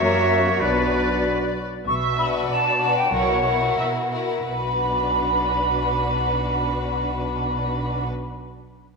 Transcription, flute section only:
0.00 E5
0.62 D5
1.87 C#6
2.18 B5
2.49 A5
2.96 G5
3.12 F#5
4.49 B5

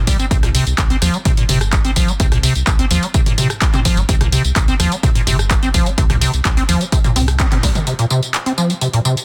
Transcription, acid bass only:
0.07 G3
0.19 C4
0.31 C3
0.43 A#2
0.55 C3
0.90 C4
1.02 F3
1.14 G3
1.25 C3
1.38 A#2
1.49 C3
1.85 C4
1.96 F3
2.08 G3
2.20 C3
2.32 A#2
2.43 C3
2.79 C4
2.91 F3
3.03 G3
3.14 C3
3.26 A#2
3.38 C3
3.74 C4
3.85 F3
3.97 G3
4.09 C3
4.21 A#2
4.33 C3
4.68 C4
4.80 F3
4.92 G3
5.03 C3
5.15 A#2
5.27 C3
5.63 C4
5.74 F3
5.86 G3
5.98 C3
6.10 A#2
6.21 C3
6.57 C4
6.69 F3
6.81 G3
6.92 C3
7.04 A#2
7.16 C4
7.40 C4
7.52 C4
7.63 G3
7.75 C3
7.87 C3
7.99 A#2
8.11 C3
8.46 C4
8.58 F3
8.70 G3
8.81 C3
8.93 A#2
9.05 C3

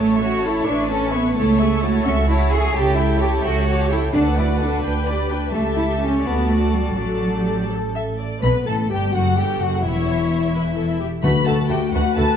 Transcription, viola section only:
Already playing: A4 C#5
0.20 A4 C#5
0.43 A4 C#5
0.65 A4 C#5
0.90 A4 C#5
1.13 A4 C#5
1.37 E4 C#5
1.60 A4 E5
1.83 E4 C#5
2.05 A4 E5
2.29 E4 C#5
2.52 A4 E5
2.76 G4 A4
2.98 G4 A4
3.21 G4 A4
3.44 G4 A4
3.68 G4 A4
3.91 G4 A4
4.14 D4 A4
4.37 F#4
4.60 D4 A4
4.84 D4 B4
5.07 G4 D5
5.31 D4 B4
5.54 G4 A4
6.25 F#4 A4
6.98 F#4 A4
7.34 G4
7.71 A4
9.14 A4
9.84 C#5
10.54 B4
10.76 A4
11.00 G4
11.24 F#4
11.94 B4

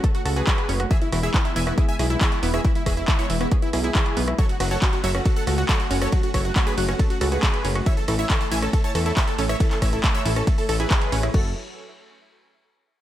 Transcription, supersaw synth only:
0.15 F#4
0.26 F#4
0.36 G#4 B4
0.91 G#4 E5
1.02 E4
1.12 E4
1.23 G#4 E5
1.34 E4
1.45 E4
1.56 E5 G#5
1.67 E4
1.78 E4
1.89 E5 G#5
1.99 E4
2.10 E4
2.21 G#4 E5
2.32 E4
2.43 E4
2.54 G#4 E5
2.65 E4
2.76 E4
2.87 G#4 E5
2.98 E4
3.08 E4
3.19 E4 C#5
3.30 E4
3.41 E4
3.62 E4
3.73 E4
3.84 E4 G#4
4.39 A4 C#5
4.50 F#4
4.60 F#4
4.71 A4 C#5
4.82 F#4
4.93 F#4
5.04 C#5 E5
5.15 F#4
5.25 F#4
5.36 A4 F#5
5.47 F#4
5.58 F#4
5.69 A4 C#5
5.80 F#4
5.91 F#4
6.02 A4 C#5
6.13 F#4
6.24 F#4
6.34 A4 C#5
6.45 F#4
6.56 F#4
6.67 G#4 B4
6.78 F#4
6.89 F#4
7.10 F#4
7.21 F#4
7.32 G#4 B4
7.86 C#5 E5
7.97 A4
8.08 A4
8.19 C#5 E5
8.30 A4
8.41 A4
8.51 E5 G#5
8.63 A4
8.73 A4
8.84 C#5 A5
8.95 A4
9.06 A4
9.17 C#5 E5
9.28 A4
9.38 A4
9.49 C#5 E5
9.60 A4
9.71 A4
9.82 C#5 E5
9.93 A4
10.04 A4
10.15 C#5 E5
10.25 A4
10.36 A4
10.58 A4
10.69 A4
10.80 G#4 B4
11.34 A4

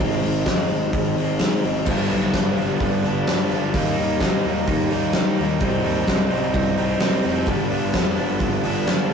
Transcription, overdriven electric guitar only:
0.01 G#2 D#3 G#3 C4 D#4
0.49 D#3 G#3 C4 D#4
1.17 G#3 C4 D#4
1.40 G#2 D#3 G#3 C4 D#4
1.62 G#3 C4 D#4
1.87 G2 D3 G3 B3 D4
2.34 D3 G3 B3 D4
3.04 G3 B3 D4
3.28 G2 D3 G3 B3 D4
3.51 G3 B3 D4
3.74 D#3 G3 A#3 D#4
4.20 D#3 G3 A#3 D#4
4.91 G3 A#3 D#4
5.15 D#3 G3 A#3 D#4
5.38 G3 A#3 D#4
5.62 C3 G3 C4 D#4
6.07 C3 G3 C4 D#4
6.78 G3 C4 D#4
7.00 C3 G3 C4 D#4
7.23 G3 C4 D#4
7.46 G2 D3 G3 B3 D4
7.93 D3 G3 B3 D4
8.63 G3 B3 D4
8.87 G2 D3 G3 B3 D4

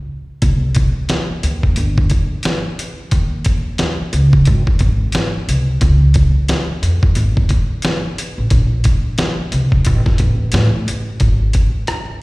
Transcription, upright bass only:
0.42 C2
1.31 muted upright bass stroke
1.43 D#2
1.77 G1
3.12 D#2
4.00 muted upright bass stroke
4.13 C#2
4.48 G#1
4.67 muted upright bass stroke
4.81 G#1
5.48 C2
5.82 C#2
6.69 muted upright bass stroke
6.82 F2
7.16 G#1
8.38 A1
8.51 A#1
9.39 muted upright bass stroke
9.52 C2
9.87 A1
10.06 muted upright bass stroke
10.20 A1
10.53 A2
10.87 A1
11.21 G#1
12.09 muted upright bass stroke

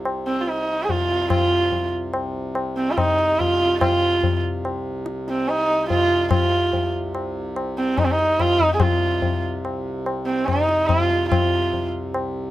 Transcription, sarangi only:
0.27 C4
0.41 F4
0.48 D#4
0.83 G#4
0.90 F4
1.31 F4
2.77 C4
2.91 F4
2.97 D#4
3.39 F4
3.81 F4
5.30 C4
5.48 D#4
5.89 F4
6.32 F4
7.78 C4
7.98 D#4
8.05 C4
8.11 D#4
8.41 F4
8.74 G#4
8.81 F4
10.26 C4
10.46 D#4
10.87 E4
11.02 F4
11.29 F4

